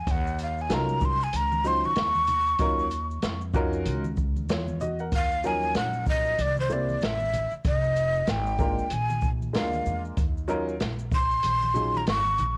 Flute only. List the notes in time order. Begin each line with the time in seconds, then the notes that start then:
0.00 G#5
0.11 F#5
0.43 F5
0.61 G#5
0.74 A#5
1.05 C6
1.24 G#5
1.36 A#5
1.67 C6
1.86 C#6
5.15 F5
5.47 G#5
5.77 F#5
6.09 D#5
6.41 D5
6.60 C5
6.73 D5
7.04 E5
7.67 D#5
8.30 G5
8.93 G#5
9.56 F5
11.15 C6
11.97 A#5
12.09 C#6